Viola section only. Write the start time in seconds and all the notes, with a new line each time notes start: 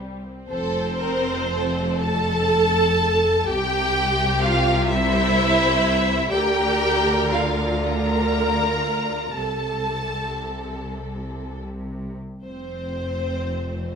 Already playing: G3 C4
0.49 C4
2.02 A4
3.48 G4
4.42 F4
4.90 E4
6.31 G4
7.32 F4
7.84 A#4
9.38 A4
12.43 C4